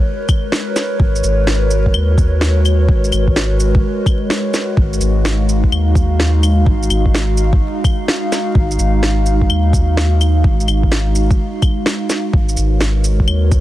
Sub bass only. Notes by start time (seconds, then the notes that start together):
0.99 G#1
1.23 G#1
1.95 D#2
2.89 G#1
3.13 G#1
4.77 G#1
5.00 G#1
5.71 D#2
6.66 G#1
6.90 G#1
8.55 G#1
8.79 G#1
9.50 D#2
10.44 G#1
10.67 G#1
12.33 G#1
12.57 G#1
13.28 D#2